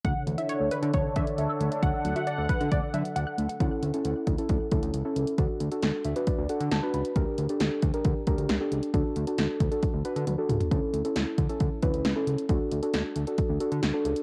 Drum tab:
HH |x-xxx-xxx-xxx-xx|x-xxx-xxx-xxx-xx|x-xxx-xxx-xxx-xx|x-xxx-xxx-xxx-xx|
SD |----------------|----------------|----------------|----o-------o---|
T1 |----------------|----------------|----------------|----------------|
T2 |----------------|----------------|----------------|----------------|
FT |----------------|----------------|----------------|----------------|
BD |o-------o-o-----|o-----o-o-------|o-----o-o-o-----|o-------o-------|

HH |x-xxx-xxx-xxx-xx|x-xxx-xxx-xxx-xx|x-xxx-xxx-xxx-xx|x-xxx-xxx-xxx-xx|
SD |----o-------o---|----o-----------|----o-------o---|----o-------o---|
T1 |----------------|------------o---|----------------|----------------|
T2 |----------------|--------------o-|----------------|----------------|
FT |----------------|---------------o|----------------|----------------|
BD |o-----o-o-o-----|o-----o-o-------|o-----o-o-o-----|o-------o-------|